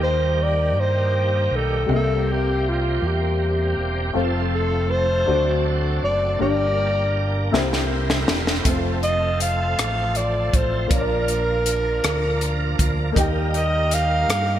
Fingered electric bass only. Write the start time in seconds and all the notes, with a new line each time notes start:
Already playing: D#2
0.76 G2
1.51 B1
1.89 C2
3.02 E2
3.77 E1
4.15 F1
5.28 D2
6.03 F#1
6.40 G1
7.53 C2
8.29 E1
8.65 F1
9.79 A1
10.54 A1
10.91 A#1
12.04 D2
12.79 D2
13.16 D#2
14.28 G2